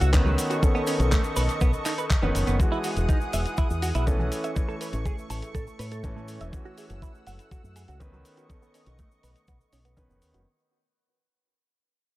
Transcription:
Already playing: grand piano E3 A3 C#4 F#4, analog synth pad A3 F#5 E6
0.01 fingered electric bass C#2, clean electric guitar F#4, closed hi-hat, cabasa
0.13 grand piano D#3 B3 C#4 B4, kick, clap, closed hi-hat, cabasa
0.26 clean electric guitar F#3
0.38 analog synth pad A4 D#5 C#6, open hi-hat, cabasa
0.50 clean electric guitar F#4, closed hi-hat, cabasa
0.62 grand piano D#3 B3 C#4 A4, kick, closed hi-hat, cabasa
0.75 clean electric guitar B3
0.87 clean electric guitar C#4, open hi-hat, cabasa
1.00 fingered electric bass B1, closed hi-hat, cabasa
1.12 clean electric guitar A3, kick, clap, closed hi-hat, cabasa
1.24 cabasa
1.36 fingered electric bass B1, clean electric guitar B4, open hi-hat, cabasa
1.49 closed hi-hat, cabasa
1.61 fingered electric bass B1, clean electric guitar B3, kick, closed hi-hat, cabasa
1.73 cabasa
1.85 clean electric guitar D#4, clap, open hi-hat, cabasa
1.98 clean electric guitar B4, closed hi-hat, cabasa
2.10 kick, clap, closed hi-hat, cabasa
2.22 fingered electric bass F#1, grand piano D#3 B3 C#4 B4, clean electric guitar B3
2.35 fingered electric bass F#1, open hi-hat, cabasa
2.47 fingered electric bass F#1, clean electric guitar B3, closed hi-hat, cabasa
2.59 grand piano E3 G#3 F#4, analog synth pad G#4 F#5 D#6, kick, closed hi-hat, cabasa
2.72 clean electric guitar E4
2.84 clean electric guitar F#4, open hi-hat, cabasa
2.97 fingered electric bass E1, closed hi-hat, cabasa
3.09 clean electric guitar D#4, kick, closed hi-hat, cabasa
3.21 cabasa
3.33 fingered electric bass E1, clean electric guitar E5, open hi-hat, cabasa
3.46 closed hi-hat, cabasa
3.57 clean electric guitar E4, muted fingered electric bass stroke, kick, closed hi-hat, cabasa
3.70 fingered electric bass E2, cabasa
3.82 clean electric guitar F#4, open hi-hat, cabasa
3.95 fingered electric bass B1, clean electric guitar E4, closed hi-hat, cabasa
4.07 grand piano E3 A3 C#4 A4, kick, closed hi-hat, cabasa
4.19 clean electric guitar E3
4.32 analog synth pad A3 C#6, open hi-hat, cabasa
4.44 clean electric guitar E5, closed hi-hat, cabasa
4.55 grand piano E3 A3 C#4, kick, closed hi-hat, cabasa
4.69 clean electric guitar A4
4.81 clean electric guitar B4, open hi-hat, cabasa
4.93 fingered electric bass A1, closed hi-hat, cabasa
5.05 clean electric guitar G#4, kick, closed hi-hat, cabasa
5.18 cabasa
5.30 fingered electric bass A1, clean electric guitar A5, open hi-hat, cabasa
5.42 closed hi-hat, cabasa
5.55 fingered electric bass A1, clean electric guitar A4, kick, closed hi-hat, cabasa
5.67 cabasa
5.79 fingered electric bass A2, clean electric guitar B4, open hi-hat, cabasa
5.92 clean electric guitar A4, closed hi-hat, cabasa
6.03 grand piano E3 A3 C#4 A4, kick, closed hi-hat, cabasa
6.16 clean electric guitar A3
6.28 open hi-hat, cabasa
6.41 fingered electric bass E1, clean electric guitar E5, closed hi-hat, cabasa
6.52 grand piano E3 A3 C#4 F#4, analog synth pad F#5 E6, kick, closed hi-hat, cabasa
6.65 clean electric guitar F#4
6.78 clean electric guitar G#4, open hi-hat, cabasa
6.90 fingered electric bass F#1, closed hi-hat, cabasa
7.02 clean electric guitar E4, kick, closed hi-hat, cabasa
7.15 cabasa
7.27 fingered electric bass F#1, clean electric guitar F#5, open hi-hat, cabasa
7.39 closed hi-hat, cabasa
7.51 clean electric guitar F#4, kick, closed hi-hat, cabasa
7.64 fingered electric bass F#2, cabasa
7.76 clean electric guitar G#4, open hi-hat, cabasa
7.88 fingered electric bass C#2, clean electric guitar F#4, closed hi-hat, cabasa
8.00 grand piano D#3 B3 C#4 B4, kick, closed hi-hat, cabasa
8.13 clean electric guitar F#3
8.25 analog synth pad D#5 C#6, open hi-hat, cabasa
8.37 clean electric guitar F#4, closed hi-hat, cabasa
8.49 grand piano D#3 B3 C#4 A4, kick, closed hi-hat, cabasa
8.62 clean electric guitar B3, cabasa
8.74 clean electric guitar C#4, open hi-hat, cabasa
8.86 fingered electric bass B1, closed hi-hat, cabasa
8.99 clean electric guitar A3, kick, closed hi-hat, cabasa
9.11 cabasa
9.23 fingered electric bass B1, clean electric guitar B4, open hi-hat, cabasa
9.36 closed hi-hat, cabasa
9.47 fingered electric bass B1, clean electric guitar B3, kick, closed hi-hat, cabasa
9.61 cabasa
9.73 fingered electric bass B1, clean electric guitar C#4, open hi-hat, cabasa
9.85 clean electric guitar B3, closed hi-hat, cabasa
9.97 grand piano D#3 B3 C#4 B4, kick, closed hi-hat, cabasa
10.10 fingered electric bass F#1, clean electric guitar B2, cabasa
10.22 fingered electric bass D#2, open hi-hat, cabasa
10.34 fingered electric bass F#1, clean electric guitar F#4, closed hi-hat, cabasa

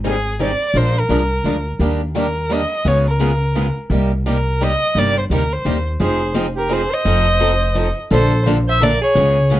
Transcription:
Already playing: upright bass G#1
0.04 steel-string acoustic guitar D#3 G3 C4 D#4 G#4, violin G#4
0.39 steel-string acoustic guitar D#3 G3 C4 D#4 G#4, violin D5
0.74 upright bass A#1, steel-string acoustic guitar F3 G#3 D4 F4 A#4, violin C5
0.99 violin A#4
1.09 upright bass C2, steel-string acoustic guitar F3 G#3 D4 F4 A#4
1.44 upright bass D2, steel-string acoustic guitar F3 G#3 D4 F4 A#4
1.79 upright bass D#2, steel-string acoustic guitar D#3 G3 A#3 D4 G4
2.15 steel-string acoustic guitar D#3 G3 A#3 D4 G4, violin A#4
2.49 steel-string acoustic guitar D#3 G3 A#3 D4 G4, violin D#5
2.85 upright bass C#2, steel-string acoustic guitar C#3 G#3 B3 F4 G#4, violin C#5
3.08 violin A#4
3.20 steel-string acoustic guitar C#3 G#3 B3 F4 G#4
3.55 steel-string acoustic guitar C#3 G#3 B3 F4 G#4
3.90 upright bass C2, steel-string acoustic guitar C3 G3 A#3 D#4 G4
4.26 steel-string acoustic guitar C3 G3 A#3 D#4 G4
4.30 violin A#4
4.61 steel-string acoustic guitar C3 G3 A#3 D#4 G4, violin D#5
4.95 upright bass G1, steel-string acoustic guitar C3 G3 A#3 D#4 G4, violin D5
5.18 violin C5
5.30 upright bass D2, steel-string acoustic guitar C3 G3 A#3 D#4 G4, violin A#4
5.53 violin C5
5.65 upright bass D#2, steel-string acoustic guitar C3 G3 A#3 D#4 G4
6.00 upright bass F1, steel-string acoustic guitar F3 C4 D#4 G#4, soprano saxophone G#4, violin C5
6.34 steel-string acoustic guitar F3 C4 D#4 G#4
6.56 soprano saxophone G4, violin A#4
6.69 steel-string acoustic guitar F3 C4 D#4 G#4, soprano saxophone G#4, violin C5
6.91 soprano saxophone C5, violin D#5
7.05 upright bass F1, steel-string acoustic guitar F3 C4 D#4 A4
7.39 steel-string acoustic guitar F3 C4 D#4 A4
7.75 steel-string acoustic guitar F3 C4 D#4 A4
8.11 upright bass A#1, steel-string acoustic guitar D3 F3 A#3 D4 A4, soprano saxophone A4, violin C5
8.46 steel-string acoustic guitar D3 F3 A#3 D4 A4
8.68 soprano saxophone C5, violin E5
8.81 steel-string acoustic guitar D3 F3 A#3 D4 A4, soprano saxophone A#4, violin D5
9.02 soprano saxophone G#4, violin C#5
9.15 upright bass C#2, steel-string acoustic guitar C#3 G#3 B3 F4 G#4
9.50 steel-string acoustic guitar C#3 G#3 B3 F4 G#4

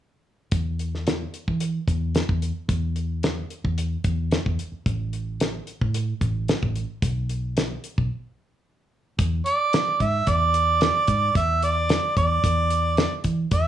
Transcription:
0.51 fingered electric bass E2, kick, closed hi-hat
0.79 closed hi-hat
0.95 snare
1.07 snare, closed hi-hat
1.34 closed hi-hat
1.48 fingered electric bass E3, kick
1.60 closed hi-hat
1.88 fingered electric bass E2, kick, closed hi-hat
2.15 snare, closed hi-hat
2.29 fingered electric bass E2, kick
2.42 closed hi-hat
2.68 fingered electric bass E2, kick, closed hi-hat
2.96 closed hi-hat
3.23 snare, closed hi-hat
3.50 closed hi-hat
3.64 fingered electric bass E2, kick
3.78 closed hi-hat
4.04 fingered electric bass E2, kick, closed hi-hat
4.31 snare, closed hi-hat
4.46 fingered electric bass E2, kick
4.59 closed hi-hat
4.72 muted fingered electric bass stroke
4.86 fingered electric bass A1, kick, closed hi-hat
5.13 closed hi-hat
5.40 snare, closed hi-hat
5.67 closed hi-hat
5.81 fingered electric bass A2, kick
5.94 closed hi-hat
6.21 fingered electric bass A1, kick, closed hi-hat
6.48 snare, closed hi-hat
6.62 fingered electric bass A1, kick
6.76 closed hi-hat
7.02 fingered electric bass B1, kick, closed hi-hat
7.29 closed hi-hat
7.57 snare, closed hi-hat
7.84 closed hi-hat
7.98 fingered electric bass B1, kick
9.19 fingered electric bass E2, kick, closed hi-hat
9.46 harmonica D5, closed hi-hat
9.73 snare, closed hi-hat
10.00 fingered electric bass G#2, harmonica E5, kick, closed hi-hat
10.27 fingered electric bass E2, harmonica D5, kick, closed hi-hat
10.54 closed hi-hat
10.81 snare, closed hi-hat
11.07 fingered electric bass G#2, kick, closed hi-hat
11.35 fingered electric bass E2, harmonica E5, kick, closed hi-hat
11.62 harmonica D5, closed hi-hat
11.89 snare, closed hi-hat
12.16 fingered electric bass E2, harmonica D5, kick, closed hi-hat
12.44 fingered electric bass E2, kick, closed hi-hat
12.70 closed hi-hat
12.97 snare, closed hi-hat
13.24 fingered electric bass E3, kick, closed hi-hat
13.51 fingered electric bass E2, harmonica E5, kick, closed hi-hat

